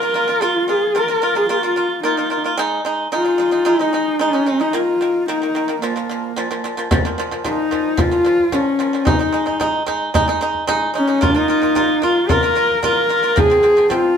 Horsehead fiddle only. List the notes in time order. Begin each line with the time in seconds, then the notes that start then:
Already playing: A#4
0.43 F4
0.69 G#4
0.98 A#4
1.37 G#4
1.50 F4
2.04 D#4
3.13 F4
3.68 D#4
4.21 C#4
4.61 D#4
4.74 F4
5.29 D#4
5.82 A#3
7.47 D#4
7.99 F4
8.53 C#4
9.06 D#4
10.96 C#4
11.23 D#4
12.04 F4
12.32 A#4
12.85 A#4
13.39 G#4
13.92 F4